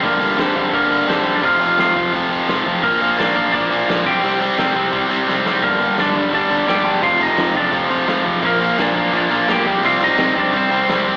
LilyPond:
<<
  \new Staff \with { instrumentName = "Lead electric guitar" } { \time 4/4 \key g \minor \tempo 4 = 171 <bes bes'>4 <c' c''>4 <bes bes'>4 <c' c''>8. <d' d''>16 | <f' f''>4 <f' f''>4 r2 | <bes bes'>4 <d' d''>4 <d' d''>4. <g' g''>8~ | <g' g''>2. r4 |
<bes bes'>4 <d' d''>4 <d' d''>4 <g' g''>4 | <f' f''>8 <ees' ees''>4 <d' d''>8 <c' c''>4. r8 | <bes bes'>4 <d' d''>4 <d' d''>4 <g' g''>4 | <f' f''>8 <ees' ees''>4 <d' d''>8 <c' c''>4. r8 | }
  \new Staff \with { instrumentName = "Distorted electric guitar" } { \clef bass \time 4/4 \key g \minor <g, d g>8 <g, d g>8 <g, d g>8 <g, d g>8 <g, d g>8 <g, d g>8 <g, d g>8 <g, d g>8 | <f, c f>8 <f, c f>8 <f, c f>8 <f, c f>8 <f, c f>8 <f, c f>8 <f, c f>8 <f, c f>8 | <bes, f bes>8 <bes, f bes>8 <bes, f bes>8 <bes, f bes>8 <bes, f bes>8 <bes, f bes>8 <bes, f bes>8 <c g c'>8 | <c g c'>8 <c g c'>8 <c g c'>8 <c g c'>8 <c g c'>8 <c g c'>8 <c g c'>8 <c g c'>8 |
<g, d g>8 <g, d g>8 <g, d g>8 <g, d g>8 <g, d g>8 <g, d g>8 <g, d g>8 <g, d g>8 | <f, c f>8 <f, c f>8 <f, c f>8 <f, c f>8 <f, c f>8 <f, c f>8 <f, c f>8 <f, c f>8 | <bes, f bes>8 <bes, f bes>8 <bes, f bes>8 <bes, f bes>8 <bes, f bes>8 <bes, f bes>8 <bes, f bes>8 <c g c'>8 | <c g c'>8 <c g c'>8 <c g c'>8 <c g c'>8 <c g c'>8 <c g c'>8 <c g c'>8 <c g c'>8 | }
  \new Staff \with { instrumentName = "Overdriven electric guitar" } { \clef bass \time 4/4 \key g \minor r1 | r1 | r1 | r1 |
<g, d g>8 <g, d g>8 <g, d g>8 <g, d g>8 <g, d g>8 <g, d g>8 <g, d g>8 <g, d g>8 | <f, c f>8 <f, c f>8 <f, c f>8 <f, c f>8 <f, c f>8 <f, c f>8 <f, c f>8 <f, c f>8 | <bes, f bes>8 <bes, f bes>8 <bes, f bes>8 <bes, f bes>8 <bes, f bes>8 <bes, f bes>8 <bes, f bes>8 <c g c'>8 | <c g c'>8 <c g c'>8 <c g c'>8 <c g c'>8 <c g c'>8 <c g c'>8 <c g c'>8 <c g c'>8 | }
  \new Staff \with { instrumentName = "Picked electric bass" } { \clef bass \time 4/4 \key g \minor g,,4 g,,8 g,,8 g,,8 g,,8 g,,8 g,,8 | f,,4 f,8 f,,8 f,,4 f,,8 f,,8 | bes,,4 bes,,8 bes,,8 bes,,8 bes,,8 bes,,8 c,8 | c,4 c8 c,8 c,4 c,8 fis,,8 |
g,,4 g,,8 g,,8 g,,8 g,,8 g,,8 g,,8 | f,,4 f,8 f,,8 f,,4 f,,8 f,,8 | bes,,4 bes,,8 bes,,8 bes,,8 bes,,8 b,,8 c,8 | c,4 c8 c,8 c,4 c,8 c,8 | }
  \new DrumStaff \with { instrumentName = "Drums" } \drummode { \time 4/4 <hho bd>8 hho8 <hho sn>8 <hho bd>8 <hho bd>8 hho8 <hho sn>8 <hho bd>8 | <hho bd>8 hho8 <hho sn>8 <hho bd>8 <hho bd>8 hho8 <hho sn>8 <hho bd>8 | <hho bd>8 hho8 <hho sn>8 <hho bd>8 <hho bd>8 hho8 <hho sn>8 <hho bd>8 | hho8 hho8 <hho sn>8 <hho bd>8 <hho bd>8 hho8 sn8 sn8 |
<hho bd>8 hho8 <hho sn>8 <hho bd>8 <hho bd>8 hho8 <hho sn>8 <hho bd>8 | <hho bd>8 hho8 <hho sn>8 <hho bd>8 <hho bd>8 hho8 <hho sn>8 <hho bd>8 | <hho bd>8 hho8 <hho sn>8 <hho bd>8 <hho bd>8 hho8 <hho sn>8 <hho bd>8 | hho8 hho8 <hho sn>8 <hho bd>8 <hho bd>8 hho8 <hho sn>8 <hho bd>8 | }
>>